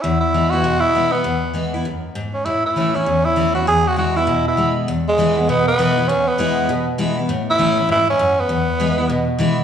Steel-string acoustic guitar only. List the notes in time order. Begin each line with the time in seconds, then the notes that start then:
0.04 E2
0.34 E3 G#3 B3 E4
0.52 B3 E4
0.64 B2
0.94 E3 G#3 B3 E4
1.13 B3 E4
1.24 E2
1.54 E3 G#3 B3 E4
1.74 B3 E4
1.85 F#2
2.15 G#2
2.46 A2
2.76 E3 A3 C#4 E4
2.94 C#4 E4
3.06 E2
3.36 E3 A3 C#4 E4
3.55 C#4 E4
3.67 E2
3.96 E3 G#3 B3 E4
4.16 B3 E4
4.27 B2
4.57 E3 G#3 B3 E4
4.88 E2
5.18 E3 G#3 B3 E4
5.37 B3 E4
5.49 B2
5.79 E3 G#3 B3 E4
5.97 B3 E4
6.09 E2
6.38 E3 G#3 B3 E4
6.69 B2
6.98 E3 G#3 B3 E4
7.17 B3 E4
7.29 A2
7.59 E3 A3 C#4 E4
7.79 C#4 E4
7.89 G#2
8.19 F#2
8.49 E2
8.80 E3 G#3 B3 E4
8.98 B3 E4
9.10 B2
9.39 E3 G#3 B3 E4
9.58 B3 E4